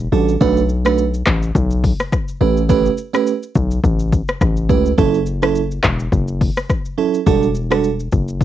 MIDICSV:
0, 0, Header, 1, 4, 480
1, 0, Start_track
1, 0, Key_signature, 2, "minor"
1, 0, Tempo, 571429
1, 344, Time_signature, 4, 2, 24, 8
1, 7093, End_track
2, 0, Start_track
2, 0, Title_t, "FM electric piano"
2, 0, Program_c, 0, 5
2, 102, Note_on_c, 0, 55, 79
2, 103, Note_on_c, 0, 62, 69
2, 105, Note_on_c, 0, 66, 71
2, 107, Note_on_c, 0, 69, 85
2, 278, Note_off_c, 0, 55, 0
2, 279, Note_off_c, 0, 62, 0
2, 279, Note_off_c, 0, 66, 0
2, 280, Note_off_c, 0, 69, 0
2, 341, Note_on_c, 0, 57, 97
2, 343, Note_on_c, 0, 62, 89
2, 344, Note_on_c, 0, 66, 87
2, 346, Note_on_c, 0, 71, 107
2, 518, Note_off_c, 0, 57, 0
2, 518, Note_off_c, 0, 62, 0
2, 519, Note_off_c, 0, 66, 0
2, 520, Note_off_c, 0, 71, 0
2, 713, Note_on_c, 0, 57, 77
2, 714, Note_on_c, 0, 62, 70
2, 716, Note_on_c, 0, 66, 70
2, 718, Note_on_c, 0, 71, 84
2, 875, Note_off_c, 0, 57, 0
2, 876, Note_off_c, 0, 62, 0
2, 877, Note_off_c, 0, 66, 0
2, 877, Note_off_c, 0, 71, 0
2, 2021, Note_on_c, 0, 57, 78
2, 2022, Note_on_c, 0, 61, 68
2, 2023, Note_on_c, 0, 67, 69
2, 2025, Note_on_c, 0, 71, 85
2, 2197, Note_off_c, 0, 57, 0
2, 2198, Note_off_c, 0, 61, 0
2, 2199, Note_off_c, 0, 67, 0
2, 2200, Note_off_c, 0, 71, 0
2, 2260, Note_on_c, 0, 57, 95
2, 2262, Note_on_c, 0, 61, 87
2, 2263, Note_on_c, 0, 67, 88
2, 2265, Note_on_c, 0, 71, 110
2, 2437, Note_off_c, 0, 57, 0
2, 2438, Note_off_c, 0, 61, 0
2, 2439, Note_off_c, 0, 67, 0
2, 2440, Note_off_c, 0, 71, 0
2, 2631, Note_on_c, 0, 57, 73
2, 2633, Note_on_c, 0, 61, 70
2, 2635, Note_on_c, 0, 67, 71
2, 2637, Note_on_c, 0, 71, 84
2, 2794, Note_off_c, 0, 57, 0
2, 2795, Note_off_c, 0, 61, 0
2, 2796, Note_off_c, 0, 67, 0
2, 2797, Note_off_c, 0, 71, 0
2, 3940, Note_on_c, 0, 57, 75
2, 3942, Note_on_c, 0, 61, 71
2, 3943, Note_on_c, 0, 67, 70
2, 3945, Note_on_c, 0, 71, 82
2, 4117, Note_off_c, 0, 57, 0
2, 4118, Note_off_c, 0, 61, 0
2, 4119, Note_off_c, 0, 67, 0
2, 4120, Note_off_c, 0, 71, 0
2, 4179, Note_on_c, 0, 54, 94
2, 4181, Note_on_c, 0, 61, 83
2, 4183, Note_on_c, 0, 64, 82
2, 4185, Note_on_c, 0, 69, 107
2, 4357, Note_off_c, 0, 54, 0
2, 4358, Note_off_c, 0, 61, 0
2, 4358, Note_off_c, 0, 64, 0
2, 4359, Note_off_c, 0, 69, 0
2, 4553, Note_on_c, 0, 54, 72
2, 4554, Note_on_c, 0, 61, 68
2, 4556, Note_on_c, 0, 64, 70
2, 4557, Note_on_c, 0, 69, 85
2, 4715, Note_off_c, 0, 54, 0
2, 4716, Note_off_c, 0, 61, 0
2, 4716, Note_off_c, 0, 64, 0
2, 4717, Note_off_c, 0, 69, 0
2, 5860, Note_on_c, 0, 54, 75
2, 5861, Note_on_c, 0, 61, 71
2, 5863, Note_on_c, 0, 64, 70
2, 5865, Note_on_c, 0, 69, 83
2, 6037, Note_off_c, 0, 54, 0
2, 6038, Note_off_c, 0, 61, 0
2, 6039, Note_off_c, 0, 64, 0
2, 6040, Note_off_c, 0, 69, 0
2, 6101, Note_on_c, 0, 55, 97
2, 6103, Note_on_c, 0, 62, 86
2, 6103, Note_on_c, 0, 66, 85
2, 6106, Note_on_c, 0, 69, 108
2, 6278, Note_off_c, 0, 55, 0
2, 6278, Note_off_c, 0, 62, 0
2, 6279, Note_off_c, 0, 66, 0
2, 6280, Note_off_c, 0, 69, 0
2, 6472, Note_on_c, 0, 55, 74
2, 6474, Note_on_c, 0, 62, 68
2, 6476, Note_on_c, 0, 66, 71
2, 6477, Note_on_c, 0, 69, 85
2, 6635, Note_off_c, 0, 55, 0
2, 6636, Note_off_c, 0, 62, 0
2, 6636, Note_off_c, 0, 66, 0
2, 6637, Note_off_c, 0, 69, 0
2, 7093, End_track
3, 0, Start_track
3, 0, Title_t, "808-style bass"
3, 0, Program_c, 1, 38
3, 104, Note_on_c, 1, 33, 97
3, 309, Note_off_c, 1, 33, 0
3, 344, Note_on_c, 1, 35, 107
3, 1030, Note_off_c, 1, 35, 0
3, 1066, Note_on_c, 1, 33, 91
3, 1270, Note_off_c, 1, 33, 0
3, 1303, Note_on_c, 1, 35, 118
3, 1621, Note_off_c, 1, 35, 0
3, 2023, Note_on_c, 1, 33, 98
3, 2433, Note_off_c, 1, 33, 0
3, 2986, Note_on_c, 1, 35, 88
3, 3190, Note_off_c, 1, 35, 0
3, 3223, Note_on_c, 1, 33, 108
3, 3541, Note_off_c, 1, 33, 0
3, 3705, Note_on_c, 1, 33, 99
3, 3942, Note_on_c, 1, 37, 98
3, 3955, Note_off_c, 1, 33, 0
3, 4148, Note_off_c, 1, 37, 0
3, 4184, Note_on_c, 1, 30, 110
3, 4870, Note_off_c, 1, 30, 0
3, 4906, Note_on_c, 1, 28, 95
3, 5110, Note_off_c, 1, 28, 0
3, 5143, Note_on_c, 1, 30, 114
3, 5461, Note_off_c, 1, 30, 0
3, 6104, Note_on_c, 1, 28, 110
3, 6790, Note_off_c, 1, 28, 0
3, 6827, Note_on_c, 1, 30, 89
3, 7063, Note_on_c, 1, 28, 114
3, 7076, Note_off_c, 1, 30, 0
3, 7093, Note_off_c, 1, 28, 0
3, 7093, End_track
4, 0, Start_track
4, 0, Title_t, "Drums"
4, 0, Note_on_c, 9, 82, 55
4, 80, Note_off_c, 9, 82, 0
4, 239, Note_on_c, 9, 82, 57
4, 323, Note_off_c, 9, 82, 0
4, 343, Note_on_c, 9, 82, 77
4, 344, Note_on_c, 9, 36, 116
4, 427, Note_off_c, 9, 82, 0
4, 428, Note_off_c, 9, 36, 0
4, 479, Note_on_c, 9, 82, 52
4, 563, Note_off_c, 9, 82, 0
4, 580, Note_on_c, 9, 82, 62
4, 664, Note_off_c, 9, 82, 0
4, 716, Note_on_c, 9, 82, 61
4, 721, Note_on_c, 9, 37, 115
4, 800, Note_off_c, 9, 82, 0
4, 805, Note_off_c, 9, 37, 0
4, 824, Note_on_c, 9, 82, 74
4, 908, Note_off_c, 9, 82, 0
4, 958, Note_on_c, 9, 82, 57
4, 1042, Note_off_c, 9, 82, 0
4, 1060, Note_on_c, 9, 37, 100
4, 1060, Note_on_c, 9, 39, 97
4, 1062, Note_on_c, 9, 82, 63
4, 1066, Note_on_c, 9, 36, 86
4, 1144, Note_off_c, 9, 37, 0
4, 1144, Note_off_c, 9, 39, 0
4, 1146, Note_off_c, 9, 82, 0
4, 1150, Note_off_c, 9, 36, 0
4, 1198, Note_on_c, 9, 82, 57
4, 1282, Note_off_c, 9, 82, 0
4, 1303, Note_on_c, 9, 36, 100
4, 1308, Note_on_c, 9, 82, 75
4, 1387, Note_off_c, 9, 36, 0
4, 1392, Note_off_c, 9, 82, 0
4, 1434, Note_on_c, 9, 82, 60
4, 1518, Note_off_c, 9, 82, 0
4, 1545, Note_on_c, 9, 36, 104
4, 1547, Note_on_c, 9, 46, 66
4, 1629, Note_off_c, 9, 36, 0
4, 1631, Note_off_c, 9, 46, 0
4, 1676, Note_on_c, 9, 82, 53
4, 1681, Note_on_c, 9, 37, 101
4, 1760, Note_off_c, 9, 82, 0
4, 1765, Note_off_c, 9, 37, 0
4, 1785, Note_on_c, 9, 36, 101
4, 1786, Note_on_c, 9, 82, 76
4, 1788, Note_on_c, 9, 37, 87
4, 1869, Note_off_c, 9, 36, 0
4, 1870, Note_off_c, 9, 82, 0
4, 1872, Note_off_c, 9, 37, 0
4, 1916, Note_on_c, 9, 82, 53
4, 2000, Note_off_c, 9, 82, 0
4, 2159, Note_on_c, 9, 82, 57
4, 2243, Note_off_c, 9, 82, 0
4, 2264, Note_on_c, 9, 36, 124
4, 2264, Note_on_c, 9, 82, 81
4, 2348, Note_off_c, 9, 36, 0
4, 2348, Note_off_c, 9, 82, 0
4, 2399, Note_on_c, 9, 82, 50
4, 2483, Note_off_c, 9, 82, 0
4, 2500, Note_on_c, 9, 82, 62
4, 2584, Note_off_c, 9, 82, 0
4, 2637, Note_on_c, 9, 82, 62
4, 2642, Note_on_c, 9, 37, 119
4, 2721, Note_off_c, 9, 82, 0
4, 2726, Note_off_c, 9, 37, 0
4, 2746, Note_on_c, 9, 82, 73
4, 2830, Note_off_c, 9, 82, 0
4, 2880, Note_on_c, 9, 82, 57
4, 2964, Note_off_c, 9, 82, 0
4, 2983, Note_on_c, 9, 82, 61
4, 2986, Note_on_c, 9, 36, 90
4, 3067, Note_off_c, 9, 82, 0
4, 3070, Note_off_c, 9, 36, 0
4, 3118, Note_on_c, 9, 82, 55
4, 3202, Note_off_c, 9, 82, 0
4, 3223, Note_on_c, 9, 36, 100
4, 3229, Note_on_c, 9, 82, 74
4, 3307, Note_off_c, 9, 36, 0
4, 3313, Note_off_c, 9, 82, 0
4, 3355, Note_on_c, 9, 82, 59
4, 3439, Note_off_c, 9, 82, 0
4, 3465, Note_on_c, 9, 36, 105
4, 3467, Note_on_c, 9, 82, 68
4, 3549, Note_off_c, 9, 36, 0
4, 3551, Note_off_c, 9, 82, 0
4, 3597, Note_on_c, 9, 82, 54
4, 3602, Note_on_c, 9, 37, 96
4, 3681, Note_off_c, 9, 82, 0
4, 3686, Note_off_c, 9, 37, 0
4, 3704, Note_on_c, 9, 36, 99
4, 3706, Note_on_c, 9, 82, 77
4, 3708, Note_on_c, 9, 37, 89
4, 3788, Note_off_c, 9, 36, 0
4, 3790, Note_off_c, 9, 82, 0
4, 3792, Note_off_c, 9, 37, 0
4, 3835, Note_on_c, 9, 82, 56
4, 3919, Note_off_c, 9, 82, 0
4, 3942, Note_on_c, 9, 36, 108
4, 3944, Note_on_c, 9, 82, 57
4, 4026, Note_off_c, 9, 36, 0
4, 4028, Note_off_c, 9, 82, 0
4, 4079, Note_on_c, 9, 82, 57
4, 4163, Note_off_c, 9, 82, 0
4, 4183, Note_on_c, 9, 82, 80
4, 4184, Note_on_c, 9, 36, 121
4, 4267, Note_off_c, 9, 82, 0
4, 4268, Note_off_c, 9, 36, 0
4, 4319, Note_on_c, 9, 82, 50
4, 4403, Note_off_c, 9, 82, 0
4, 4420, Note_on_c, 9, 82, 59
4, 4504, Note_off_c, 9, 82, 0
4, 4556, Note_on_c, 9, 82, 60
4, 4561, Note_on_c, 9, 37, 118
4, 4640, Note_off_c, 9, 82, 0
4, 4645, Note_off_c, 9, 37, 0
4, 4666, Note_on_c, 9, 82, 72
4, 4750, Note_off_c, 9, 82, 0
4, 4800, Note_on_c, 9, 82, 58
4, 4884, Note_off_c, 9, 82, 0
4, 4901, Note_on_c, 9, 37, 99
4, 4901, Note_on_c, 9, 39, 100
4, 4903, Note_on_c, 9, 82, 60
4, 4906, Note_on_c, 9, 36, 88
4, 4985, Note_off_c, 9, 37, 0
4, 4985, Note_off_c, 9, 39, 0
4, 4987, Note_off_c, 9, 82, 0
4, 4990, Note_off_c, 9, 36, 0
4, 5038, Note_on_c, 9, 82, 57
4, 5122, Note_off_c, 9, 82, 0
4, 5143, Note_on_c, 9, 36, 101
4, 5149, Note_on_c, 9, 82, 74
4, 5227, Note_off_c, 9, 36, 0
4, 5233, Note_off_c, 9, 82, 0
4, 5275, Note_on_c, 9, 82, 60
4, 5359, Note_off_c, 9, 82, 0
4, 5385, Note_on_c, 9, 36, 100
4, 5388, Note_on_c, 9, 46, 66
4, 5469, Note_off_c, 9, 36, 0
4, 5472, Note_off_c, 9, 46, 0
4, 5517, Note_on_c, 9, 82, 55
4, 5521, Note_on_c, 9, 37, 99
4, 5601, Note_off_c, 9, 82, 0
4, 5605, Note_off_c, 9, 37, 0
4, 5625, Note_on_c, 9, 36, 97
4, 5626, Note_on_c, 9, 82, 76
4, 5628, Note_on_c, 9, 37, 91
4, 5709, Note_off_c, 9, 36, 0
4, 5710, Note_off_c, 9, 82, 0
4, 5712, Note_off_c, 9, 37, 0
4, 5756, Note_on_c, 9, 82, 52
4, 5840, Note_off_c, 9, 82, 0
4, 6000, Note_on_c, 9, 82, 55
4, 6084, Note_off_c, 9, 82, 0
4, 6104, Note_on_c, 9, 36, 122
4, 6104, Note_on_c, 9, 82, 77
4, 6188, Note_off_c, 9, 36, 0
4, 6188, Note_off_c, 9, 82, 0
4, 6239, Note_on_c, 9, 82, 50
4, 6323, Note_off_c, 9, 82, 0
4, 6340, Note_on_c, 9, 82, 63
4, 6424, Note_off_c, 9, 82, 0
4, 6477, Note_on_c, 9, 82, 62
4, 6482, Note_on_c, 9, 37, 121
4, 6561, Note_off_c, 9, 82, 0
4, 6566, Note_off_c, 9, 37, 0
4, 6586, Note_on_c, 9, 82, 75
4, 6670, Note_off_c, 9, 82, 0
4, 6719, Note_on_c, 9, 82, 59
4, 6803, Note_off_c, 9, 82, 0
4, 6823, Note_on_c, 9, 82, 60
4, 6826, Note_on_c, 9, 36, 90
4, 6907, Note_off_c, 9, 82, 0
4, 6910, Note_off_c, 9, 36, 0
4, 6958, Note_on_c, 9, 82, 57
4, 7042, Note_off_c, 9, 82, 0
4, 7063, Note_on_c, 9, 36, 99
4, 7093, Note_off_c, 9, 36, 0
4, 7093, End_track
0, 0, End_of_file